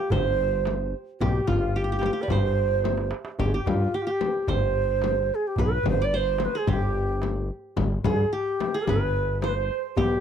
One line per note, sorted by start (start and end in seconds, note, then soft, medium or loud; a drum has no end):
0.00 0.61 F4 medium
0.00 0.13 G4 medium
0.00 1.20 G4 soft
0.10 0.94 G1 medium
0.10 0.93 C5 medium
0.10 1.17 C5 medium
0.10 darbuka dum medium
0.10 frame drum medium
0.65 darbuka tek medium
0.65 frame drum medium
0.79 darbuka ka soft
0.93 darbuka ka soft
1.20 1.42 B1 medium
1.20 1.49 G4 medium
1.20 1.75 G4 medium
1.20 darbuka dum medium
1.20 frame drum medium
1.47 2.10 G1 medium
1.47 1.78 F4 medium
1.47 2.82 F4 medium
1.47 frame drum medium
1.47 darbuka dum medium
1.76 1.84 G4 medium
1.76 2.23 G4 medium
1.84 1.92 G4 soft
1.89 1.98 G4 medium
1.89 darbuka ka soft
1.99 2.05 G4 soft
1.99 darbuka tek medium
2.03 2.13 G4 medium
2.03 frame drum medium
2.13 3.39 G4 soft
2.13 darbuka ka soft
2.22 2.38 B4 medium
2.22 2.30 D5 medium
2.28 3.13 G1 loud
2.28 3.12 C5 medium
2.28 3.37 C5 medium
2.28 darbuka dum medium
2.28 frame drum medium
2.84 darbuka tek soft
2.84 frame drum medium
2.97 darbuka ka medium
3.11 darbuka tek medium
3.25 darbuka ka medium
3.39 3.60 G1 medium
3.39 3.54 G4 medium
3.39 3.47 G4 medium
3.39 darbuka dum medium
3.39 frame drum medium
3.45 3.56 G#4 medium
3.54 3.94 G4 medium
3.54 3.69 G4 medium
3.66 3.88 G2 medium
3.66 3.97 F4 medium
3.66 darbuka dum medium
3.66 frame drum medium
3.80 darbuka ka soft
3.94 4.06 G4 medium
3.94 4.03 G4 medium
4.02 4.12 F4 medium
4.07 5.32 G4 medium
4.07 4.53 G4 medium
4.21 frame drum medium
4.34 darbuka ka soft
4.47 5.31 G1 medium
4.47 5.65 C5 medium
4.47 darbuka dum medium
4.47 frame drum medium
4.51 5.36 C5 medium
5.02 darbuka tek medium
5.02 frame drum medium
5.16 darbuka ka soft
5.29 darbuka ka soft
5.35 5.49 G#4 medium
5.47 5.64 G4 medium
5.56 5.79 B1 medium
5.56 6.20 B4 medium
5.56 darbuka dum medium
5.56 frame drum medium
5.62 5.88 B4 medium
5.83 6.48 G1 medium
5.83 darbuka dum medium
5.83 frame drum medium
5.89 6.05 C5 medium
5.97 darbuka ka soft
6.02 7.00 D5 medium
6.02 6.17 D5 medium
6.14 7.19 C5 medium
6.14 6.46 C5 medium
6.38 darbuka tek medium
6.38 frame drum medium
6.45 6.59 B4 medium
6.55 6.74 G#4 medium
6.55 6.69 G#4 medium
6.67 7.51 G1 loud
6.67 7.94 G4 medium
6.67 7.48 G4 medium
6.67 darbuka dum medium
6.67 frame drum medium
7.22 darbuka tek medium
7.22 frame drum medium
7.36 darbuka ka soft
7.50 darbuka ka soft
7.77 7.98 G1 medium
7.77 darbuka dum medium
7.77 frame drum medium
8.04 8.25 G2 medium
8.04 8.35 G#4 medium
8.04 8.39 G#4 medium
8.04 frame drum medium
8.04 darbuka dum medium
8.19 darbuka ka soft
8.33 8.80 G4 medium
8.33 8.87 G4 medium
8.60 darbuka tek medium
8.60 frame drum medium
8.74 9.95 G#4 medium
8.86 9.70 G1 medium
8.86 9.40 B4 medium
8.86 9.50 B4 medium
8.86 darbuka dum medium
8.86 frame drum medium
9.41 9.50 C5 medium
9.41 10.20 C5 medium
9.41 darbuka tek medium
9.41 frame drum medium
9.48 9.56 B4 medium
9.54 9.82 C5 medium
9.54 darbuka ka soft
9.69 darbuka ka soft
9.96 10.18 B1 medium
9.96 10.20 G4 medium
9.96 darbuka dum medium
9.96 frame drum medium